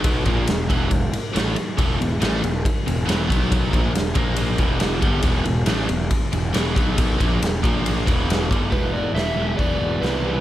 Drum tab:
RD |xxxxxxxx|xxxxxxxx|xxxxxxxx|xxxxxxxx|
HH |--------|--------|--------|--------|
SD |--oo--o-|--o---o-|--o---o-|--o---o-|
BD |oo-oo---|o---o--o|oo-o-o-o|o---o--o|

RD |xxxxxxxx|--------|
HH |--------|o-o-o-o-|
SD |--o---o-|--o---o-|
BD |oo-o-o-o|o---o---|